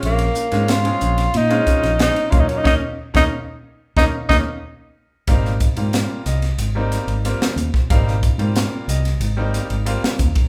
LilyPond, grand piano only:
\new Staff \with { instrumentName = "Grand piano" } { \time 4/4 \key ees \dorian \tempo 4 = 92 << { r1 | <bes des' ees'>16 r8 <bes des' ees'>16 r4 <bes des' ees'>16 r16 <bes des' ees'>16 r4 r16 | \key aes \major f''4. ees''4. r4 | f''4. ees''4. r4 | } \\ { <aes c' des' f'>16 r16 <des' f'>16 <aes c' des' f'>16 r16 <aes c' des' aes'>8 r16 <des' f'>16 <aes c' des' f'>8 r16 <aes c' des' aes'>16 <des' f'>16 <ges bes des' f'>8 | r1 | <g bes c' ees'>16 r16 <c' ees'>16 <g bes c' f'>4 r16 <c' f'>16 <g bes c' ees'>8 r16 <g bes c' f'>16 r16 <c' ees'>16 <c' f'>16 | <g bes c' ees'>16 r16 <c' f'>16 <g bes c' f'>4 r16 <c' ees'>16 <g bes c' ees'>8 r16 <g bes c' f'>16 r16 <c' ees'>16 <c' ees'>16 | } >> }